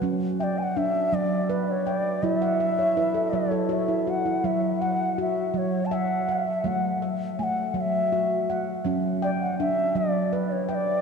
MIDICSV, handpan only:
0, 0, Header, 1, 2, 480
1, 0, Start_track
1, 0, Tempo, 735294
1, 22, Time_signature, 6, 3, 24, 8
1, 7191, End_track
2, 0, Start_track
2, 0, Title_t, "Handpan"
2, 0, Program_c, 0, 114
2, 0, Note_on_c, 0, 78, 57
2, 11, Note_on_c, 0, 54, 74
2, 20, Note_on_c, 0, 61, 70
2, 262, Note_off_c, 0, 78, 0
2, 264, Note_on_c, 0, 79, 54
2, 500, Note_on_c, 0, 62, 66
2, 502, Note_off_c, 0, 61, 0
2, 620, Note_off_c, 0, 54, 0
2, 735, Note_on_c, 0, 54, 72
2, 976, Note_on_c, 0, 71, 69
2, 982, Note_off_c, 0, 62, 0
2, 984, Note_off_c, 0, 79, 0
2, 1219, Note_on_c, 0, 79, 58
2, 1343, Note_off_c, 0, 54, 0
2, 1454, Note_on_c, 0, 54, 70
2, 1459, Note_on_c, 0, 64, 67
2, 1460, Note_off_c, 0, 71, 0
2, 1579, Note_on_c, 0, 78, 58
2, 1699, Note_on_c, 0, 76, 60
2, 1702, Note_off_c, 0, 79, 0
2, 1805, Note_off_c, 0, 78, 0
2, 1820, Note_on_c, 0, 73, 57
2, 1925, Note_off_c, 0, 76, 0
2, 1929, Note_off_c, 0, 64, 0
2, 1937, Note_on_c, 0, 64, 64
2, 1940, Note_on_c, 0, 71, 60
2, 2045, Note_off_c, 0, 73, 0
2, 2053, Note_on_c, 0, 69, 59
2, 2063, Note_off_c, 0, 54, 0
2, 2165, Note_off_c, 0, 71, 0
2, 2173, Note_on_c, 0, 71, 51
2, 2176, Note_on_c, 0, 54, 70
2, 2281, Note_off_c, 0, 69, 0
2, 2294, Note_on_c, 0, 69, 57
2, 2402, Note_off_c, 0, 71, 0
2, 2408, Note_on_c, 0, 66, 55
2, 2411, Note_on_c, 0, 73, 59
2, 2421, Note_off_c, 0, 64, 0
2, 2522, Note_off_c, 0, 69, 0
2, 2535, Note_on_c, 0, 64, 54
2, 2639, Note_off_c, 0, 66, 0
2, 2657, Note_on_c, 0, 66, 59
2, 2763, Note_off_c, 0, 64, 0
2, 2778, Note_on_c, 0, 64, 57
2, 2784, Note_off_c, 0, 54, 0
2, 2884, Note_off_c, 0, 66, 0
2, 2898, Note_off_c, 0, 73, 0
2, 2900, Note_on_c, 0, 54, 76
2, 3004, Note_off_c, 0, 64, 0
2, 3144, Note_on_c, 0, 78, 54
2, 3383, Note_on_c, 0, 66, 67
2, 3505, Note_off_c, 0, 54, 0
2, 3615, Note_on_c, 0, 54, 69
2, 3860, Note_on_c, 0, 76, 69
2, 3863, Note_off_c, 0, 66, 0
2, 3864, Note_off_c, 0, 78, 0
2, 4103, Note_on_c, 0, 78, 58
2, 4222, Note_off_c, 0, 54, 0
2, 4335, Note_on_c, 0, 54, 72
2, 4342, Note_off_c, 0, 76, 0
2, 4344, Note_on_c, 0, 57, 66
2, 4583, Note_off_c, 0, 78, 0
2, 4584, Note_on_c, 0, 76, 55
2, 4816, Note_off_c, 0, 57, 0
2, 4824, Note_on_c, 0, 57, 69
2, 4942, Note_off_c, 0, 54, 0
2, 5054, Note_on_c, 0, 54, 71
2, 5303, Note_off_c, 0, 57, 0
2, 5303, Note_off_c, 0, 76, 0
2, 5303, Note_on_c, 0, 66, 67
2, 5546, Note_on_c, 0, 78, 60
2, 5661, Note_off_c, 0, 54, 0
2, 5774, Note_on_c, 0, 54, 76
2, 5782, Note_off_c, 0, 66, 0
2, 5783, Note_on_c, 0, 61, 75
2, 6021, Note_on_c, 0, 79, 59
2, 6024, Note_off_c, 0, 78, 0
2, 6262, Note_off_c, 0, 61, 0
2, 6266, Note_on_c, 0, 62, 71
2, 6380, Note_off_c, 0, 54, 0
2, 6497, Note_on_c, 0, 54, 75
2, 6740, Note_off_c, 0, 79, 0
2, 6742, Note_on_c, 0, 71, 62
2, 6743, Note_off_c, 0, 62, 0
2, 6976, Note_on_c, 0, 79, 62
2, 7101, Note_off_c, 0, 54, 0
2, 7191, Note_off_c, 0, 71, 0
2, 7191, Note_off_c, 0, 79, 0
2, 7191, End_track
0, 0, End_of_file